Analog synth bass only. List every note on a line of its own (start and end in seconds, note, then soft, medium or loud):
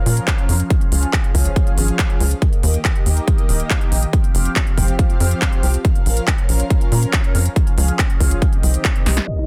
0.06 0.20 A#2 medium
0.49 0.63 F2 medium
0.92 1.06 C#2 medium
1.35 1.48 C#2 medium
1.78 1.91 G#1 medium
2.20 2.34 C#2 medium
2.63 2.77 D#2 loud
3.06 3.20 D#2 medium
3.49 3.63 D#1 loud
3.92 4.06 A#1 medium
4.35 4.49 F1 loud
4.78 4.91 F1 medium
5.20 5.34 F2 loud
5.63 5.77 C2 medium
6.06 6.20 A#1 loud
6.49 6.63 A#1 medium
6.92 7.06 A#2 loud
7.35 7.49 F2 medium
7.78 7.91 C#2 loud
8.20 8.34 C#2 medium
8.63 8.77 C2 loud
9.06 9.20 C2 medium